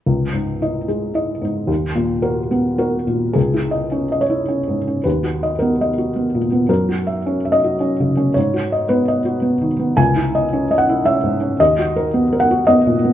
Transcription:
\new Staff \with { instrumentName = "Felt piano" } { \time 3/4 \key cis \dorian \tempo 4 = 110 << { r2. | r2. | gis'4. cis''4. | b'4 ais'4. r8 |
ais'4. dis''4. | cis''4 b'4. r8 | gis''4. fis''8 e''4 | dis''4. fis''8 dis''4 | } \\ { cis,8 gis,8 <e' dis''>8 gis8 <e' dis''>8 gis,8 | dis,8 ais,8 <fis' ais'>8 b8 <fis' ais'>8 ais,8 | \tuplet 3/2 { cis,8 e'8 dis''8 cis'8 dis''8 e'8 cis'8 gis,8 cis'8 } | \tuplet 3/2 { dis,8 fis'8 dis''8 b8 dis''8 fis'8 b8 ais,8 b8 } |
\tuplet 3/2 { fis,8 fis'8 e''8 cis'8 e''8 fis'8 cis'8 cis8 cis'8 } | \tuplet 3/2 { gis,8 fis'8 dis''8 b8 dis''8 fis'8 b8 dis8 b8 } | \tuplet 3/2 { cis,8 e'8 dis''8 cis'8 dis''8 e'8 cis'8 gis,8 cis'8 } | \tuplet 3/2 { dis,8 fis'8 ais'8 b8 ais'8 fis'8 b8 ais,8 b8 } | } >> }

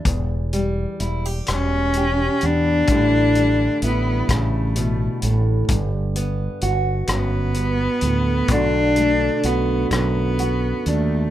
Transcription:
<<
  \new Staff \with { instrumentName = "Cello" } { \time 6/8 \key b \minor \tempo 4. = 42 r4. cis'4 d'8~ | d'4 b8 a4 r8 | r4. b4. | d'4 b8 b4 a8 | }
  \new Staff \with { instrumentName = "Steel-string acoustic guitar" } { \clef bass \time 6/8 \key b \minor << { g8 g8 e'16 g'8. g'8 b8 | <d g e'>8 g8 e'2 | r8 b8 fis'2 | <d a d' fis'>8 a8 fis'4 fis'8 d'8 | } \\ { e,4. b,4. | a,4. cis8 b,8 a,8 | g,4. fis,8 g,8 a,8 | b,4. fis,4. | } >> }
  \new Staff \with { instrumentName = "Fretless electric bass" } { \clef bass \time 6/8 \key b \minor e,,4 e,,8 e,,4 e,8 | a,,4 a,,8 a,,4 a,,8 | g,,4 g,,8 g,,4 d,8 | b,,4 b,,8 b,,4 dis,8 | }
  \new DrumStaff \with { instrumentName = "Drums" } \drummode { \time 6/8 <hh bd>8 hh8 hh8 <hh ss>8 hh8 hh8 | <hh bd>8 hh8 hh8 <hh bd ss>8 hh8 hh8 | <hh bd>8 hh8 hh8 <hh ss>8 hh8 hh8 | <hh bd>8 hh8 hh8 <hh bd ss>8 hh8 hh8 | }
>>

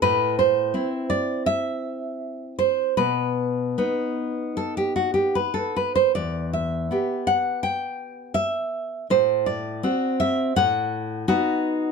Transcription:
\new Staff \with { instrumentName = "Nylon-string guitar" } { \time 4/4 \key e \minor \tempo 4 = 82 << { b'8 c''4 d''8 e''4. c''8 | b'2 a'16 g'16 fis'16 g'16 b'16 a'16 b'16 c''16 | d''8 e''4 fis''8 g''4 e''4 | c''8 d''4 e''8 fis''4 fis'4 | } \\ { a,4 <c' e'>2. | b,4 <b dis'>2. | e,4 <b g'>2. | a,4 <c' fis'>4 a,4 <b dis'>4 | } >> }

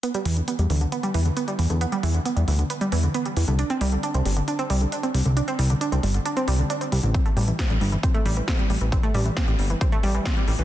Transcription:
<<
  \new Staff \with { instrumentName = "Synth pluck" } { \clef bass \time 4/4 \key e \minor \tempo 4 = 135 b16 g16 e16 d16 b16 g16 e16 d16 b16 g16 e16 d16 b16 g16 e16 d16 | b16 g16 e16 d16 b16 g16 e16 d16 b16 g16 e16 d16 b16 g16 e16 d16 | d'16 c'16 g16 d16 d'16 c'16 g16 d16 d'16 c'16 g16 d16 d'16 c'16 g16 d16 | d'16 c'16 g16 d16 d'16 c'16 g16 d16 d'16 c'16 g16 d16 d'16 c'16 g16 d16 |
c'16 a16 g16 e16 c'16 g16 g16 e16 c'16 a16 g16 e16 c'16 g16 g16 e16 | c'16 a16 g16 e16 c'16 g16 g16 e16 c'16 a16 g16 e16 c'16 g16 g16 e16 | }
  \new Staff \with { instrumentName = "Analog synth bass" } { \clef bass \time 4/4 \key e \minor r8 e,16 r8 e,16 d,16 r8. e,16 r8. e,16 e,16 | r8 e,16 r8 e,16 d,16 r8. e,16 r8. e,16 c,16 | r8 c,16 r8 c,16 g,,16 r8. c,16 r8. c,16 c,16 | r8 c,16 r8 c,16 g,,16 r8. c,16 r8. c,16 a,,16 |
r8 a,,16 r8 a,,16 g,,16 r8. a,,16 r8. a,,16 a,,16 | r8 a,,16 r8 a,,16 g,,16 r8. a,,16 r8. a,,16 b,,16 | }
  \new DrumStaff \with { instrumentName = "Drums" } \drummode { \time 4/4 hh16 hh16 hho16 hh16 hh16 hh16 hho16 hh16 hh16 hh16 hho16 hh16 hh16 hh16 hho16 hh16 | hh16 hh16 hho16 hh16 hh16 hh16 hho16 hh16 hh16 hh16 hho16 hh16 hh16 hh16 hho16 hh16 | hh16 hh16 hho16 hh16 hh16 hh16 hho16 hh16 hh16 hh16 hho16 hh16 hh16 hh16 hho16 hh16 | hh16 hh16 hho16 hh16 hh16 hh16 hho16 hh16 hh16 hh16 hho8 hh16 hh16 hho16 hh16 |
<hh bd>16 hh16 hho16 hh16 <hh bd sn>16 hh16 hho16 hh16 <hh bd>16 hh16 hho16 hh16 <hh bd sn>16 hh16 hho16 hh16 | <hh bd>16 hh16 hho16 hh16 <hh bd sn>16 hh16 hho16 hh16 <hh bd>16 hh16 hho16 hh16 <hh bd sn>16 hh16 hho16 hh16 | }
>>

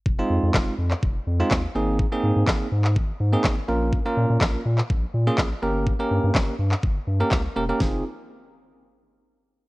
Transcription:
<<
  \new Staff \with { instrumentName = "Tine electric piano" } { \time 4/4 \key f \minor \tempo 4 = 124 r16 <aes c' ees' f'>4~ <aes c' ees' f'>16 r4 r16 <aes c' ees' f'>8 r16 <bes c' ees' aes'>8 | r16 <bes c' ees' aes'>4~ <bes c' ees' aes'>16 r4 r16 <bes c' ees' aes'>8 r16 <bes des' f' bes'>8 | r16 <bes des' f' bes'>4~ <bes des' f' bes'>16 r4 r16 <bes des' f' aes'>8 r16 <bes des' g' bes'>8 | r16 <bes des' g' bes'>4~ <bes des' g' bes'>16 r4 r16 <bes des' g' bes'>8 r16 <bes des' g' bes'>16 <bes des' g' bes'>16 |
<c' ees' f' aes'>8 r2. r8 | }
  \new Staff \with { instrumentName = "Analog synth bass" } { \clef bass \time 4/4 \key f \minor f,,8 f,16 f,16 f,,8 f,8 f,,8 f,8 ees,8 aes,,8~ | aes,,8 aes,16 aes,16 aes,,8 aes,8 aes,,8 aes,8 aes,,8 bes,,8~ | bes,,8 bes,16 bes,16 bes,,8 bes,8 bes,,8 bes,8 bes,,8 g,,8~ | g,,8 g,16 g,16 g,,8 g,8 g,,8 g,8 des,8 e,,8 |
f,,8 r2. r8 | }
  \new DrumStaff \with { instrumentName = "Drums" } \drummode { \time 4/4 bd4 <hc bd sn>8. hc16 bd4 <hc bd sn>4 | bd4 <hc bd sn>8. hc16 bd4 <hc bd sn>4 | bd4 <hc bd sn>8. hc16 bd4 <hc bd sn>4 | bd4 <hc bd sn>8. hc16 bd4 <hc bd sn>4 |
<bd sn>4 r4 r4 r4 | }
>>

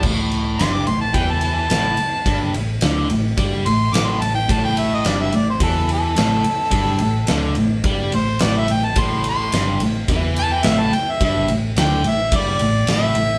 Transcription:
<<
  \new Staff \with { instrumentName = "Harmonica" } { \time 4/4 \key a \minor \tempo 4 = 107 r4 c'''16 d'''16 c'''16 a''16 g''16 a''16 a''4.~ | a''8 r2 c'''8 d'''16 c'''16 a''16 g''16 | a''16 g''16 e''16 dis''16 d''16 e''16 d''16 c''16 a'8 a'4.~ | a'4. r4 c''8 d''16 e''16 g''16 a''16 |
c'''8 c'''4 r4 a''16 g''16 e''16 a''16 g''16 e''16 | e''8 r8 g''8 e''8 d''4 e''4 | }
  \new Staff \with { instrumentName = "Distorted electric guitar" } { \clef bass \time 4/4 \key a \minor a,4 g,8 a,8 e4 a,8 r8 | g,8 a,8 d8 a,8 g8 a,8 a,8 a,8 | a,4 g,8 a,8 e4 a,8 r8 | g,8 a,8 d8 a,8 g8 a,8 a,8 a,8 |
a,4 g,8 a,8 e4 a,8 r8 | g,8 a,8 d8 a,8 g8 a,8 a,8 a,8 | }
  \new Staff \with { instrumentName = "Picked electric bass" } { \clef bass \time 4/4 \key a \minor a,,4 g,,8 a,,8 e,4 a,,8 r8 | g,,8 a,,8 d,8 a,,8 g,8 a,,8 a,,8 a,,8 | a,,4 g,,8 a,,8 e,4 a,,8 r8 | g,,8 a,,8 d,8 a,,8 g,8 a,,8 a,,8 a,,8 |
a,,4 g,,8 a,,8 e,4 a,,8 r8 | g,,8 a,,8 d,8 a,,8 g,8 a,,8 a,,8 a,,8 | }
  \new DrumStaff \with { instrumentName = "Drums" } \drummode { \time 4/4 <cymc bd>8 cymr8 <cymr sn>8 cymr8 <bd cymr>8 cymr8 <cymr sn>8 cymr8 | <bd cymr>8 cymr8 <cymr sn>8 cymr8 <bd cymr>8 cymr8 <cymr sn>8 cymr8 | <bd cymr>8 cymr8 <cymr sn>8 cymr8 <bd cymr>8 cymr8 <cymr sn>8 cymr8 | <bd cymr>8 cymr8 <cymr sn>8 cymr8 <bd cymr>8 cymr8 <cymr sn>8 cymr8 |
<bd cymr>8 cymr8 <cymr sn>8 cymr8 <bd cymr>8 cymr8 <cymr sn>8 cymr8 | <bd cymr>8 cymr8 <cymr sn>8 cymr8 <bd cymr>8 cymr8 <cymr sn>8 cymr8 | }
>>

